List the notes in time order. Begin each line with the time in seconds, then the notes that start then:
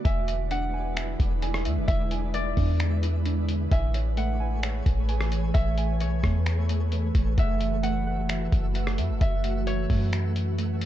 0.05 E1 D3 G#3 E4 B4 D5 E5 G#5, kick, closed hi-hat
0.28 E5, closed hi-hat
0.51 D4 F#5, closed hi-hat
0.74 G#5
0.97 E5, finger snap, closed hi-hat
1.20 E1, kick, closed hi-hat
1.42 G#5, closed hi-hat
1.54 cross-stick
1.65 E2 E5, closed hi-hat
1.77 E1
1.88 E1 B4 E5, kick, closed hi-hat
2.11 G#5, closed hi-hat
2.34 D5, closed hi-hat
2.57 E2 D4, kick, open hi-hat
2.80 finger snap, closed hi-hat
3.03 closed hi-hat
3.26 D4, closed hi-hat
3.49 closed hi-hat
3.71 A1 E3 A3 G#4 C#5 E5 G#5, kick, closed hi-hat
3.94 C#5, closed hi-hat
4.17 A3 F#5, closed hi-hat
4.40 G#5
4.63 C#5, finger snap, closed hi-hat
4.86 A1, kick, closed hi-hat
5.09 G#5, closed hi-hat
5.21 cross-stick
5.32 C#5, closed hi-hat
5.54 A1 E5, kick, closed hi-hat
5.78 G#5, closed hi-hat
6.00 B1 C#5, closed hi-hat
6.23 E2 A3, kick, cross-stick
6.46 finger snap, closed hi-hat
6.69 closed hi-hat
6.92 A3, closed hi-hat
7.15 A1, kick, closed hi-hat
7.38 F#1 F#4 E5 F#5, kick, closed hi-hat
7.61 E5, closed hi-hat
7.83 A3 F#5, closed hi-hat
8.07 F#5
8.29 E5, finger snap, closed hi-hat
8.52 F#1, kick, closed hi-hat
8.75 F#5, closed hi-hat
8.87 cross-stick
8.98 F#2 E5, closed hi-hat
9.10 F#1
9.21 F#1 E5, kick, closed hi-hat
9.44 F#5, closed hi-hat
9.67 C#5, closed hi-hat
9.90 F#2 A3, kick, open hi-hat
10.13 finger snap, closed hi-hat
10.36 closed hi-hat
10.58 A3, closed hi-hat
10.81 closed hi-hat